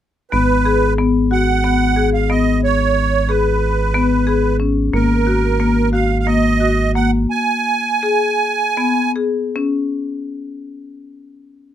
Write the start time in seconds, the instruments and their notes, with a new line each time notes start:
0.31 analog synth bass G#1, marimba B3, accordion B4
0.65 marimba G#4
0.98 marimba B3
1.31 marimba F#4, accordion F#5
1.64 marimba B3
1.96 marimba G#4
2.14 accordion F5
2.30 marimba B3, accordion D#5
2.64 accordion C#5
3.29 marimba G#4, accordion B4
3.94 marimba B3
4.27 marimba G#4
4.60 marimba C#4
4.93 analog synth bass G#1, marimba A#3, accordion A#4
5.27 marimba F#4
5.60 marimba A#3
5.93 marimba F#4, accordion F5
6.19 accordion F5
6.26 marimba A#3, accordion D#5
6.60 marimba F#4
6.95 marimba A#3, accordion F#5
7.30 accordion G#5
8.03 marimba G#4
8.77 marimba B3
9.16 marimba G#4
9.56 marimba C#4